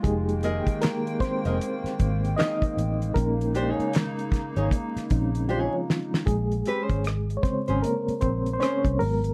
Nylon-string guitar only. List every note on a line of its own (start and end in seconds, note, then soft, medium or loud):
0.44 0.80 G#4 medium
0.44 0.80 A#4 medium
0.44 0.80 D#5 medium
1.46 1.58 G#4 soft
1.46 1.58 A#4 medium
1.46 1.57 D#5 medium
2.38 2.62 G#4 medium
2.38 2.62 A#4 medium
2.38 2.62 D#5 medium
3.55 3.70 D4 medium
3.55 3.70 G4 medium
3.55 3.71 C5 medium
3.70 3.91 D#4 medium
3.70 3.91 G#4 medium
3.70 3.92 C#5 medium
4.57 4.69 D#4 soft
4.57 4.69 G#4 medium
4.57 4.68 C#5 medium
5.49 5.73 D#4 medium
5.49 5.74 G#4 medium
5.49 5.74 C#5 medium
6.67 6.82 C4 medium
6.67 6.82 G4 medium
6.67 6.83 B4 medium
6.82 7.03 C#4 medium
6.82 7.03 G#4 medium
6.82 7.04 C5 medium
7.68 7.81 C#4 soft
7.68 7.80 G#4 medium
7.68 7.80 C5 medium
8.60 8.85 C#4 medium
8.60 8.85 G#4 medium
8.60 8.86 C5 medium